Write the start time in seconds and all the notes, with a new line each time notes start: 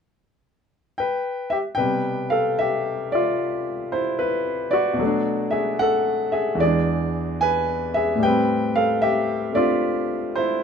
0.98 B4 G5
1.50 G4 E5
1.75 C3 B4 G5
1.79 B2 G3
2.30 A4 F5
2.59 G4 E5
3.12 F4 D5 E5
3.92 E4 C5
4.19 E4 B4
4.71 F#4 D5
4.93 B2
4.99 F#3 A3
5.06 D4
5.51 G#4 E5
5.79 A4 F#5
6.32 G#4 E5
6.55 E2 E3
6.60 G#3 G#4 D5
6.66 D4
7.41 B4 G#5
7.94 G#4 E5
8.15 A2 G3
8.23 B4 G5
8.27 C4
8.76 A4 F5
9.02 G4 E5
9.53 A3 C4 D4 F4 D5
10.36 E4 C5